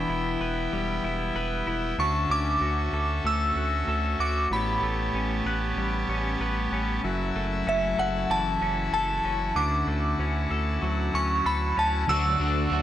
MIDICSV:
0, 0, Header, 1, 6, 480
1, 0, Start_track
1, 0, Key_signature, 2, "major"
1, 0, Tempo, 631579
1, 1505, Time_signature, 4, 2, 24, 8
1, 9745, End_track
2, 0, Start_track
2, 0, Title_t, "Synth bell"
2, 0, Program_c, 0, 98
2, 0, Note_on_c, 0, 83, 76
2, 521, Note_off_c, 0, 83, 0
2, 1518, Note_on_c, 0, 85, 80
2, 1758, Note_off_c, 0, 85, 0
2, 1759, Note_on_c, 0, 86, 85
2, 2482, Note_on_c, 0, 88, 90
2, 2493, Note_off_c, 0, 86, 0
2, 3195, Note_on_c, 0, 86, 80
2, 3215, Note_off_c, 0, 88, 0
2, 3437, Note_off_c, 0, 86, 0
2, 3442, Note_on_c, 0, 83, 70
2, 3883, Note_off_c, 0, 83, 0
2, 5842, Note_on_c, 0, 76, 71
2, 6075, Note_on_c, 0, 78, 70
2, 6081, Note_off_c, 0, 76, 0
2, 6316, Note_on_c, 0, 81, 85
2, 6317, Note_off_c, 0, 78, 0
2, 6782, Note_off_c, 0, 81, 0
2, 6791, Note_on_c, 0, 81, 84
2, 7266, Note_on_c, 0, 86, 83
2, 7282, Note_off_c, 0, 81, 0
2, 8474, Note_on_c, 0, 85, 84
2, 8712, Note_on_c, 0, 83, 78
2, 8717, Note_off_c, 0, 85, 0
2, 8915, Note_off_c, 0, 86, 0
2, 8956, Note_off_c, 0, 83, 0
2, 8960, Note_on_c, 0, 81, 85
2, 9190, Note_on_c, 0, 88, 112
2, 9199, Note_off_c, 0, 81, 0
2, 9745, Note_off_c, 0, 88, 0
2, 9745, End_track
3, 0, Start_track
3, 0, Title_t, "Pipe organ"
3, 0, Program_c, 1, 19
3, 0, Note_on_c, 1, 59, 61
3, 0, Note_on_c, 1, 64, 54
3, 0, Note_on_c, 1, 76, 57
3, 0, Note_on_c, 1, 79, 63
3, 1470, Note_off_c, 1, 64, 0
3, 1489, Note_off_c, 1, 59, 0
3, 1491, Note_off_c, 1, 79, 0
3, 1510, Note_on_c, 1, 61, 59
3, 1512, Note_on_c, 1, 66, 57
3, 1512, Note_on_c, 1, 81, 63
3, 3400, Note_off_c, 1, 76, 0
3, 3408, Note_off_c, 1, 61, 0
3, 3409, Note_off_c, 1, 66, 0
3, 3409, Note_off_c, 1, 81, 0
3, 3426, Note_on_c, 1, 73, 54
3, 3427, Note_on_c, 1, 81, 64
3, 3429, Note_on_c, 1, 59, 57
3, 3432, Note_on_c, 1, 67, 57
3, 5326, Note_off_c, 1, 73, 0
3, 5328, Note_off_c, 1, 59, 0
3, 5329, Note_off_c, 1, 67, 0
3, 5345, Note_on_c, 1, 76, 56
3, 5346, Note_on_c, 1, 64, 60
3, 5347, Note_on_c, 1, 66, 52
3, 7239, Note_off_c, 1, 66, 0
3, 7246, Note_off_c, 1, 76, 0
3, 7254, Note_on_c, 1, 66, 50
3, 7256, Note_on_c, 1, 78, 58
3, 9155, Note_off_c, 1, 64, 0
3, 9155, Note_off_c, 1, 81, 0
3, 9160, Note_off_c, 1, 66, 0
3, 9161, Note_off_c, 1, 78, 0
3, 9178, Note_on_c, 1, 66, 67
3, 9179, Note_on_c, 1, 81, 73
3, 9181, Note_on_c, 1, 74, 64
3, 9182, Note_on_c, 1, 69, 61
3, 9745, Note_off_c, 1, 66, 0
3, 9745, Note_off_c, 1, 69, 0
3, 9745, Note_off_c, 1, 74, 0
3, 9745, Note_off_c, 1, 81, 0
3, 9745, End_track
4, 0, Start_track
4, 0, Title_t, "Clean electric guitar"
4, 0, Program_c, 2, 27
4, 0, Note_on_c, 2, 52, 72
4, 0, Note_on_c, 2, 62, 53
4, 72, Note_on_c, 2, 64, 54
4, 311, Note_on_c, 2, 71, 58
4, 553, Note_on_c, 2, 55, 60
4, 784, Note_off_c, 2, 64, 0
4, 793, Note_on_c, 2, 64, 52
4, 1024, Note_off_c, 2, 71, 0
4, 1033, Note_on_c, 2, 71, 61
4, 1261, Note_off_c, 2, 64, 0
4, 1270, Note_on_c, 2, 64, 51
4, 1506, Note_off_c, 2, 52, 0
4, 1511, Note_on_c, 2, 50, 70
4, 1556, Note_off_c, 2, 64, 0
4, 1557, Note_off_c, 2, 55, 0
4, 1557, Note_off_c, 2, 71, 0
4, 1747, Note_off_c, 2, 62, 0
4, 1750, Note_on_c, 2, 61, 49
4, 1988, Note_on_c, 2, 66, 53
4, 2232, Note_on_c, 2, 69, 57
4, 2471, Note_on_c, 2, 57, 61
4, 2703, Note_off_c, 2, 66, 0
4, 2712, Note_on_c, 2, 66, 51
4, 2949, Note_off_c, 2, 69, 0
4, 2952, Note_on_c, 2, 69, 64
4, 3183, Note_off_c, 2, 66, 0
4, 3193, Note_on_c, 2, 66, 55
4, 3428, Note_off_c, 2, 50, 0
4, 3431, Note_on_c, 2, 45, 70
4, 3477, Note_off_c, 2, 66, 0
4, 3669, Note_off_c, 2, 61, 0
4, 3672, Note_off_c, 2, 57, 0
4, 3672, Note_on_c, 2, 57, 52
4, 3912, Note_on_c, 2, 61, 53
4, 4149, Note_off_c, 2, 69, 0
4, 4152, Note_on_c, 2, 71, 60
4, 4392, Note_on_c, 2, 55, 61
4, 4629, Note_off_c, 2, 61, 0
4, 4632, Note_on_c, 2, 61, 52
4, 4864, Note_off_c, 2, 71, 0
4, 4873, Note_on_c, 2, 71, 59
4, 5108, Note_off_c, 2, 61, 0
4, 5111, Note_on_c, 2, 61, 50
4, 5348, Note_off_c, 2, 45, 0
4, 5352, Note_on_c, 2, 42, 72
4, 5397, Note_off_c, 2, 55, 0
4, 5397, Note_off_c, 2, 71, 0
4, 5589, Note_off_c, 2, 57, 0
4, 5592, Note_on_c, 2, 57, 55
4, 5827, Note_off_c, 2, 61, 0
4, 5830, Note_on_c, 2, 61, 53
4, 6071, Note_on_c, 2, 69, 60
4, 6310, Note_on_c, 2, 52, 66
4, 6548, Note_off_c, 2, 61, 0
4, 6551, Note_on_c, 2, 61, 58
4, 6789, Note_off_c, 2, 69, 0
4, 6792, Note_on_c, 2, 69, 67
4, 7025, Note_off_c, 2, 61, 0
4, 7028, Note_on_c, 2, 61, 55
4, 7266, Note_on_c, 2, 50, 76
4, 7268, Note_off_c, 2, 42, 0
4, 7315, Note_off_c, 2, 52, 0
4, 7505, Note_off_c, 2, 57, 0
4, 7508, Note_on_c, 2, 57, 53
4, 7746, Note_off_c, 2, 61, 0
4, 7749, Note_on_c, 2, 61, 54
4, 7983, Note_off_c, 2, 69, 0
4, 7986, Note_on_c, 2, 69, 58
4, 8225, Note_on_c, 2, 54, 61
4, 8458, Note_off_c, 2, 61, 0
4, 8467, Note_on_c, 2, 61, 52
4, 8705, Note_off_c, 2, 69, 0
4, 8708, Note_on_c, 2, 69, 68
4, 8937, Note_off_c, 2, 61, 0
4, 8946, Note_on_c, 2, 61, 57
4, 9188, Note_off_c, 2, 50, 0
4, 9191, Note_on_c, 2, 50, 82
4, 9193, Note_off_c, 2, 69, 0
4, 9196, Note_on_c, 2, 66, 68
4, 9234, Note_off_c, 2, 61, 0
4, 9432, Note_on_c, 2, 62, 61
4, 9663, Note_off_c, 2, 66, 0
4, 9672, Note_on_c, 2, 66, 72
4, 9745, Note_off_c, 2, 50, 0
4, 9745, Note_off_c, 2, 54, 0
4, 9745, Note_off_c, 2, 57, 0
4, 9745, Note_off_c, 2, 62, 0
4, 9745, Note_off_c, 2, 66, 0
4, 9745, End_track
5, 0, Start_track
5, 0, Title_t, "Overdriven electric guitar"
5, 0, Program_c, 3, 29
5, 9174, Note_on_c, 3, 50, 76
5, 9183, Note_on_c, 3, 54, 79
5, 9190, Note_on_c, 3, 57, 77
5, 9197, Note_on_c, 3, 62, 81
5, 9202, Note_on_c, 3, 66, 94
5, 9398, Note_off_c, 3, 66, 0
5, 9407, Note_on_c, 3, 66, 59
5, 9420, Note_off_c, 3, 50, 0
5, 9423, Note_off_c, 3, 62, 0
5, 9424, Note_off_c, 3, 54, 0
5, 9428, Note_off_c, 3, 57, 0
5, 9432, Note_on_c, 3, 62, 50
5, 9451, Note_on_c, 3, 57, 50
5, 9648, Note_on_c, 3, 50, 83
5, 9656, Note_off_c, 3, 66, 0
5, 9657, Note_off_c, 3, 57, 0
5, 9658, Note_on_c, 3, 54, 82
5, 9664, Note_off_c, 3, 62, 0
5, 9667, Note_on_c, 3, 57, 91
5, 9673, Note_on_c, 3, 62, 93
5, 9679, Note_on_c, 3, 66, 102
5, 9745, Note_off_c, 3, 50, 0
5, 9745, Note_off_c, 3, 54, 0
5, 9745, Note_off_c, 3, 57, 0
5, 9745, Note_off_c, 3, 62, 0
5, 9745, Note_off_c, 3, 66, 0
5, 9745, End_track
6, 0, Start_track
6, 0, Title_t, "Analog synth bass"
6, 0, Program_c, 4, 38
6, 67, Note_on_c, 4, 28, 102
6, 277, Note_off_c, 4, 28, 0
6, 304, Note_on_c, 4, 28, 93
6, 516, Note_off_c, 4, 28, 0
6, 549, Note_on_c, 4, 28, 98
6, 759, Note_off_c, 4, 28, 0
6, 786, Note_on_c, 4, 28, 87
6, 997, Note_off_c, 4, 28, 0
6, 1026, Note_on_c, 4, 28, 92
6, 1237, Note_off_c, 4, 28, 0
6, 1265, Note_on_c, 4, 28, 89
6, 1477, Note_off_c, 4, 28, 0
6, 1505, Note_on_c, 4, 38, 107
6, 1716, Note_off_c, 4, 38, 0
6, 1742, Note_on_c, 4, 38, 96
6, 1954, Note_off_c, 4, 38, 0
6, 1982, Note_on_c, 4, 38, 106
6, 2195, Note_off_c, 4, 38, 0
6, 2223, Note_on_c, 4, 38, 84
6, 2435, Note_off_c, 4, 38, 0
6, 2462, Note_on_c, 4, 38, 96
6, 2675, Note_off_c, 4, 38, 0
6, 2702, Note_on_c, 4, 38, 92
6, 2914, Note_off_c, 4, 38, 0
6, 2945, Note_on_c, 4, 38, 97
6, 3156, Note_off_c, 4, 38, 0
6, 3185, Note_on_c, 4, 38, 88
6, 3397, Note_off_c, 4, 38, 0
6, 3421, Note_on_c, 4, 33, 109
6, 3634, Note_off_c, 4, 33, 0
6, 3663, Note_on_c, 4, 33, 97
6, 3875, Note_off_c, 4, 33, 0
6, 3903, Note_on_c, 4, 33, 95
6, 4115, Note_off_c, 4, 33, 0
6, 4143, Note_on_c, 4, 33, 92
6, 4355, Note_off_c, 4, 33, 0
6, 4382, Note_on_c, 4, 33, 109
6, 4595, Note_off_c, 4, 33, 0
6, 4622, Note_on_c, 4, 33, 103
6, 4835, Note_off_c, 4, 33, 0
6, 4863, Note_on_c, 4, 33, 95
6, 5075, Note_off_c, 4, 33, 0
6, 5103, Note_on_c, 4, 33, 82
6, 5315, Note_off_c, 4, 33, 0
6, 5348, Note_on_c, 4, 30, 106
6, 5558, Note_off_c, 4, 30, 0
6, 5589, Note_on_c, 4, 30, 90
6, 5799, Note_off_c, 4, 30, 0
6, 5828, Note_on_c, 4, 30, 102
6, 6038, Note_off_c, 4, 30, 0
6, 6067, Note_on_c, 4, 30, 85
6, 6277, Note_off_c, 4, 30, 0
6, 6306, Note_on_c, 4, 30, 101
6, 6517, Note_off_c, 4, 30, 0
6, 6546, Note_on_c, 4, 30, 96
6, 6757, Note_off_c, 4, 30, 0
6, 6781, Note_on_c, 4, 30, 101
6, 6994, Note_off_c, 4, 30, 0
6, 7024, Note_on_c, 4, 30, 87
6, 7236, Note_off_c, 4, 30, 0
6, 7261, Note_on_c, 4, 38, 108
6, 7474, Note_off_c, 4, 38, 0
6, 7501, Note_on_c, 4, 38, 90
6, 7714, Note_off_c, 4, 38, 0
6, 7743, Note_on_c, 4, 38, 106
6, 7955, Note_off_c, 4, 38, 0
6, 7985, Note_on_c, 4, 38, 96
6, 8197, Note_off_c, 4, 38, 0
6, 8226, Note_on_c, 4, 38, 108
6, 8437, Note_off_c, 4, 38, 0
6, 8464, Note_on_c, 4, 38, 91
6, 8676, Note_off_c, 4, 38, 0
6, 8706, Note_on_c, 4, 38, 96
6, 8917, Note_off_c, 4, 38, 0
6, 8947, Note_on_c, 4, 38, 84
6, 9157, Note_off_c, 4, 38, 0
6, 9185, Note_on_c, 4, 38, 116
6, 9396, Note_off_c, 4, 38, 0
6, 9420, Note_on_c, 4, 38, 99
6, 9634, Note_off_c, 4, 38, 0
6, 9661, Note_on_c, 4, 38, 112
6, 9745, Note_off_c, 4, 38, 0
6, 9745, End_track
0, 0, End_of_file